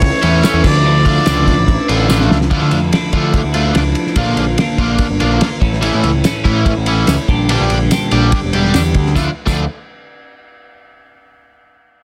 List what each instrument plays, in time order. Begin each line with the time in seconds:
Already playing: clean electric guitar E3 A3 C#4 E4, string machine A4 E5 C#6, trumpet C#5
0.02 kick, ride
0.23 picked electric bass E2, overdriven electric guitar E3, clean electric guitar A3 C#4 E4, ride
0.43 clean electric guitar E3 A3 C#4 E4, trumpet C#5, snare, ride, tambourine
0.54 picked electric bass E2
0.63 picked electric bass D2, clean electric guitar D3 F3 A3 D4 E4, string machine D5 E5 E6, kick, crash
0.67 trumpet D5
0.84 clean electric guitar D3 F3 A3 D4 E4
1.05 overdriven electric guitar D3 F4, clean electric guitar A3 D4 E4, kick, ride
1.25 picked electric bass C#2, clean electric guitar D3 F3 A3 D4 E4, overdriven electric guitar F4, snare, ride, tambourine
1.46 clean electric guitar A3 D4 E4, kick, ride
1.59 picked electric bass A1
1.68 kick, ride
1.88 picked electric bass A1, overdriven electric guitar D3 F4, clean electric guitar A3 D4 E4, ride
2.08 picked electric bass A1, overdriven electric guitar D3 F4, clean electric guitar F3 A3 D4 E4, snare, tambourine
2.21 snare
2.31 picked electric bass C#2, snare
2.41 snare
2.50 picked electric bass D2, clean electric guitar D3 F3 A3 D4 E4, overdriven electric guitar F4, kick, crash
2.62 picked electric bass D3
2.71 picked electric bass F2, ride
2.92 clean electric guitar D3 F3 A3 D4 E4, snare, ride
3.12 picked electric bass D3, overdriven electric guitar D3 F4, clean electric guitar A3 D4 E4, kick, ride
3.34 kick, ride
3.44 picked electric bass D2
3.53 overdriven electric guitar D3 F4, clean electric guitar A3 D4 E4, ride
3.75 picked electric bass C#2, clean electric guitar F3 A3 D4 E4, snare, ride
3.95 ride
4.07 snare
4.16 picked electric bass A#1, clean electric guitar A#2 D3 A#3 D4 F4, kick, ride
4.27 picked electric bass A#1
4.37 picked electric bass A#1, ride
4.58 clean electric guitar A#2 D3 A#3 D4 F4, snare, ride
4.78 picked electric bass A#1, overdriven electric guitar D3, clean electric guitar A#3 D4 F4, kick, ride
4.98 kick, ride
5.10 picked electric bass G1
5.20 picked electric bass A#1, overdriven electric guitar D3, clean electric guitar A#3 D4 F4, ride
5.40 clean electric guitar D3 A#3 D4 F4, snare, ride
5.60 picked electric bass A1, clean electric guitar A2 E3 A3 C#4 E4, kick, ride
5.73 snare
5.81 clean electric guitar A2 E3 A3 C#4 E4, ride
5.94 picked electric bass A2
6.04 picked electric bass C#2, ride
6.23 clean electric guitar A2 E3 A3 C#4 E4, snare, ride, tambourine
6.44 picked electric bass A2, overdriven electric guitar E3, clean electric guitar A3 C#4 E4, kick, ride
6.66 kick, ride
6.77 picked electric bass A1
6.86 overdriven electric guitar E3, clean electric guitar A3 C#4 E4, ride
7.06 picked electric bass C#2, clean electric guitar E3 A3 C#4 E4, snare, ride, tambourine
7.28 picked electric bass A#1, clean electric guitar A#2 D3 G3 D4 G4, kick, ride
7.49 clean electric guitar A#2 D3 G3 D4 G4, ride
7.61 picked electric bass A#1
7.70 picked electric bass A#1, ride
7.91 clean electric guitar A#2 D3 G3 D4 G4, snare, ride, tambourine
8.11 picked electric bass A#1, overdriven electric guitar D3, clean electric guitar G3 D4 G4, ride
8.32 kick, ride
8.44 picked electric bass E1
8.53 picked electric bass E1, overdriven electric guitar D3, clean electric guitar G3 D4 G4, ride
8.65 snare
8.74 picked electric bass E2, clean electric guitar D3 G3 D4 G4, snare, ride, tambourine
8.94 picked electric bass D2, kick, ride
9.06 snare
9.15 picked electric bass D2, clean electric guitar D3 F3 A3 D4 E4, overdriven electric guitar F4, kick, snare, tambourine
9.47 picked electric bass D2, clean electric guitar D3 F3 A3 D4 E4, overdriven electric guitar F4, kick, crash, tambourine